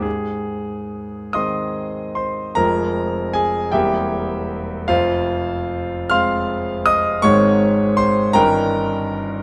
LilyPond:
<<
  \new Staff \with { instrumentName = "Grand piano" } { \time 6/8 \key aes \major \tempo 4. = 52 aes'4. <ees'' c''' ees'''>4 <c'' c'''>8 | \key f \minor <bes' bes''>4 <aes' aes''>8 <g' e'' g''>4. | <f' c'' f''>4. <f'' c''' f'''>4 <ees'' ees'''>8 | <des'' des'''>4 <c'' c'''>8 <bes' g'' bes''>4. | }
  \new Staff \with { instrumentName = "Grand piano" } { \clef bass \time 6/8 \key aes \major aes,4. <ees aes c'>4. | \key f \minor <f,, f, f aes c'>4. <e,, e, g bes c'>4. | <f,, f,>4. <aes c'>4. | <aes,, aes, ees aes c'>4. <g,, g, ees des' ees'>4. | }
>>